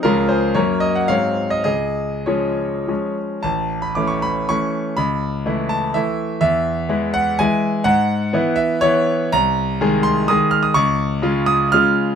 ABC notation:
X:1
M:3/4
L:1/16
Q:1/4=122
K:Db
V:1 name="Grand piano"
[FB]2 [Ac]2 [Bd]2 e g [df]3 e | [Ae]4 [Ad]6 z2 | [K:A] a3 b d' c' b2 c'4 | b6 a2 e4 |
e6 f2 g4 | f6 e2 c4 | [K:Db] b6 c'2 e'2 f' e' | d'6 e'2 f'4 |]
V:2 name="Grand piano" clef=bass
[D,,F,A,D]4 [G,,G,B,D]4 [A,,G,A,C]4 | D,,4 [F,A,D]4 [F,A,D]4 | [K:A] A,,,4 [E,A,C]4 [E,A,C]4 | C,,4 [E,A,E]4 [E,A,E]4 |
E,,4 [E,G,E]4 [E,G,E]4 | G,,4 [E,B,E]4 [E,B,E]4 | [K:Db] C,,4 [E,A,A]4 [E,A,A]4 | D,,4 [D,A,F]4 [D,A,F]4 |]